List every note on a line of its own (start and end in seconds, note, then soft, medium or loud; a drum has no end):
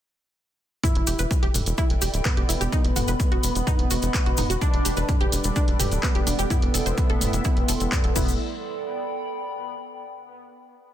0.83 1.45 E4 loud
0.83 0.95 E4 loud
0.83 3.43 A4 medium
0.83 kick loud
0.83 closed hi-hat medium
0.83 mid tom medium
0.83 cabasa soft
0.95 1.03 E1 medium
0.95 closed hi-hat medium
1.07 1.15 E1 medium
1.07 1.15 G4 medium
1.07 open hi-hat loud
1.07 cabasa medium
1.19 1.27 E1 medium
1.19 1.30 B4 medium
1.19 closed hi-hat medium
1.19 cabasa medium
1.29 2.72 G5 medium
1.29 kick loud
1.29 closed hi-hat medium
1.29 cabasa soft
1.42 1.50 E1 medium
1.42 1.47 G4 loud
1.42 2.72 D5 medium
1.42 closed hi-hat medium
1.54 1.62 E1 loud
1.54 mid tom medium
1.54 open hi-hat medium
1.54 cabasa medium
1.66 1.74 E1 loud
1.66 6.50 B5 medium
1.66 closed hi-hat medium
1.66 cabasa medium
1.78 1.89 E4 loud
1.78 kick loud
1.78 closed hi-hat medium
1.78 cabasa soft
1.90 1.98 E1 medium
1.90 closed hi-hat medium
2.02 2.09 E1 loud
2.02 2.10 G4 medium
2.02 open hi-hat loud
2.02 cabasa loud
2.14 2.21 D1 medium
2.14 closed hi-hat medium
2.14 cabasa soft
2.25 4.52 B3 loud
2.25 2.33 B4 medium
2.25 kick loud
2.25 clap loud
2.25 closed hi-hat medium
2.25 mid tom medium
2.25 cabasa soft
2.37 2.45 E1 medium
2.37 2.45 G4 medium
2.37 closed hi-hat medium
2.49 2.57 E1 loud
2.49 2.54 E4 medium
2.49 open hi-hat medium
2.49 cabasa loud
2.61 2.68 E1 medium
2.61 2.69 G4 medium
2.61 closed hi-hat medium
2.61 cabasa medium
2.72 2.84 D#4 loud
2.72 5.37 B4 medium
2.72 kick loud
2.72 closed hi-hat medium
2.72 cabasa soft
2.84 2.92 E1 medium
2.84 closed hi-hat medium
2.96 3.04 E1 loud
2.96 3.04 F#4 medium
2.96 mid tom medium
2.96 open hi-hat loud
2.96 cabasa medium
3.08 3.16 E1 medium
3.08 3.19 B4 medium
3.08 closed hi-hat medium
3.08 cabasa medium
3.20 kick loud
3.20 closed hi-hat medium
3.20 cabasa soft
3.32 3.39 E1 medium
3.32 3.36 F#4 loud
3.32 closed hi-hat medium
3.38 4.61 D#5 medium
3.43 3.51 E1 loud
3.43 open hi-hat loud
3.43 cabasa medium
3.55 3.63 E1 medium
3.55 4.61 F#5 medium
3.55 closed hi-hat medium
3.55 cabasa soft
3.67 3.78 D#4 loud
3.67 kick loud
3.67 closed hi-hat medium
3.67 mid tom medium
3.67 cabasa soft
3.79 3.86 E1 medium
3.79 closed hi-hat medium
3.90 3.98 E1 loud
3.90 3.99 F#4 medium
3.90 open hi-hat loud
3.90 cabasa medium
4.02 4.10 E1 medium
4.02 closed hi-hat medium
4.02 cabasa medium
4.14 4.22 B4 medium
4.14 kick loud
4.14 clap loud
4.14 closed hi-hat medium
4.14 cabasa soft
4.26 4.34 E1 medium
4.26 4.34 F#4 medium
4.26 closed hi-hat medium
4.37 4.46 E1 loud
4.37 4.43 D#4 medium
4.37 mid tom medium
4.37 open hi-hat loud
4.37 cabasa medium
4.50 4.57 E1 medium
4.50 4.58 F#4 loud
4.50 closed hi-hat medium
4.50 cabasa medium
4.61 6.48 G3 medium
4.61 6.48 D4 medium
4.61 5.23 D4 loud
4.61 4.73 D4 loud
4.61 8.14 A4 medium
4.61 6.49 B4 medium
4.61 6.48 D5 loud
4.61 kick loud
4.61 closed hi-hat medium
4.61 cabasa soft
4.73 4.81 E1 medium
4.73 closed hi-hat medium
4.85 4.93 E1 loud
4.85 4.93 G4 medium
4.85 open hi-hat loud
4.85 cabasa loud
4.97 5.05 E1 medium
4.97 5.08 B4 medium
4.97 closed hi-hat medium
4.97 cabasa medium
5.09 8.16 D5 medium
5.09 kick loud
5.09 closed hi-hat medium
5.09 mid tom medium
5.09 cabasa soft
5.21 5.28 E1 medium
5.21 5.25 G4 loud
5.21 closed hi-hat medium
5.32 5.40 E1 loud
5.32 open hi-hat loud
5.32 cabasa loud
5.44 5.52 E1 medium
5.44 8.16 G5 medium
5.44 closed hi-hat medium
5.44 cabasa medium
5.56 5.67 D4 loud
5.56 kick loud
5.56 closed hi-hat medium
5.56 cabasa soft
5.68 5.75 E1 medium
5.68 closed hi-hat medium
5.80 5.87 E1 loud
5.80 5.88 G4 medium
5.80 mid tom medium
5.80 open hi-hat loud
5.80 cabasa loud
5.91 5.99 D1 medium
5.91 closed hi-hat medium
5.91 cabasa medium
6.03 8.15 B3 loud
6.03 6.11 B4 medium
6.03 kick loud
6.03 clap loud
6.03 closed hi-hat medium
6.03 cabasa soft
6.15 6.23 E1 medium
6.15 6.23 G4 medium
6.15 closed hi-hat medium
6.27 6.35 E1 loud
6.27 6.32 D4 medium
6.27 open hi-hat loud
6.27 cabasa medium
6.39 6.46 E1 medium
6.39 6.47 G4 loud
6.39 closed hi-hat medium
6.39 cabasa medium
6.50 8.14 A3 medium
6.50 8.14 E4 medium
6.50 6.62 E4 loud
6.50 8.14 A4 medium
6.50 8.14 E5 medium
6.50 kick loud
6.50 closed hi-hat medium
6.50 mid tom medium
6.50 cabasa soft
6.62 6.70 E1 medium
6.62 closed hi-hat medium
6.74 6.82 E1 loud
6.74 6.82 A4 medium
6.74 open hi-hat loud
6.74 cabasa loud
6.86 6.93 E1 medium
6.86 6.97 C5 medium
6.86 closed hi-hat medium
6.86 cabasa medium
6.98 kick loud
6.98 closed hi-hat medium
6.98 cabasa soft
7.10 7.17 E1 medium
7.10 7.14 A4 loud
7.10 closed hi-hat medium
7.18 7.29 E1 loud
7.18 8.16 C6 medium
7.18 mid tom loud
7.18 open hi-hat loud
7.18 cabasa medium
7.33 7.41 E1 loud
7.33 closed hi-hat medium
7.33 cabasa medium
7.44 7.56 E4 loud
7.44 kick loud
7.44 closed hi-hat medium
7.44 cabasa soft
7.57 7.64 E1 medium
7.57 closed hi-hat medium
7.68 7.76 E1 loud
7.68 7.77 A4 medium
7.68 open hi-hat loud
7.68 cabasa medium
7.80 7.88 E1 medium
7.80 closed hi-hat medium
7.80 cabasa medium
7.92 8.00 C5 medium
7.92 kick loud
7.92 clap loud
7.92 closed hi-hat medium
7.92 mid tom medium
7.92 cabasa soft
8.04 8.12 E1 medium
8.04 8.12 A4 medium
8.04 closed hi-hat medium
8.16 8.38 E1 loud
8.16 8.33 B3 loud
8.16 8.38 E4 loud
8.16 10.01 A4 medium
8.16 kick loud
8.16 crash medium
8.16 cabasa loud
8.23 10.01 D5 medium
8.28 cabasa soft
8.53 10.24 G5 medium
8.61 10.24 B5 medium